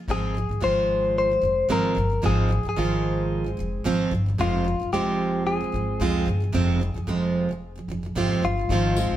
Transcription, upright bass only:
0.08 G#1
0.49 G#1
0.62 G#1
1.42 F1
1.69 G#1
1.97 G1
2.24 G#1
2.65 G#1
2.78 G#1
3.59 F1
3.86 G#1
4.12 G1
4.39 F1
4.81 F1
4.93 F1
5.73 G#1
6.00 C2
6.27 G1
6.54 F1
6.95 F1
7.07 F1
7.88 F1
8.15 G#1
8.42 G1
8.69 G#1
9.11 A#1

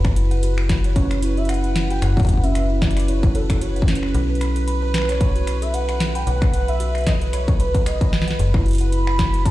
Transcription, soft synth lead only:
0.70 B4
0.84 C#5
1.37 E5
1.49 F#5
1.90 G5
2.02 F#5
2.43 E5
2.82 D5
3.08 C#5
3.35 A4
3.61 C#5
4.94 B4
5.09 C#5
5.62 E5
5.74 F#5
6.15 G5
6.27 F#5
6.68 E5
7.06 D#5
7.33 C#5
7.60 B4
7.86 D#5
8.92 B5
9.45 A5

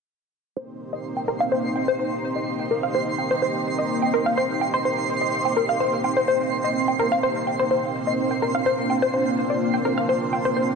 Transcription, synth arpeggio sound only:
0.57 C5
0.93 D#5
1.17 G5
1.28 A#4
1.40 F5
1.52 C5
1.76 G5
1.88 C5
1.99 C5
2.36 D#5
2.59 G5
2.71 A#4
2.83 F5
2.95 C5
3.18 G5
3.31 C5
3.42 C5
3.78 D#5
4.02 G5
4.14 A#4
4.26 F5
4.37 C5
4.61 G5
4.74 C5
4.85 C5
5.21 D#5
5.45 G5
5.57 A#4
5.69 F5
5.80 C5
6.04 G5
6.17 C5
6.28 C5
6.64 D#5
6.88 G5
6.99 A#4
7.12 F5
7.23 C5
7.47 G5
7.59 C5
7.71 C5
8.07 D#5
8.31 G5
8.42 A#4
8.55 F5
8.66 C5
8.90 G5
9.02 C5
9.14 C5
9.50 D5
9.74 G5
9.85 A#4
9.98 F5
10.09 C5
10.33 G5
10.45 C5
10.57 C5

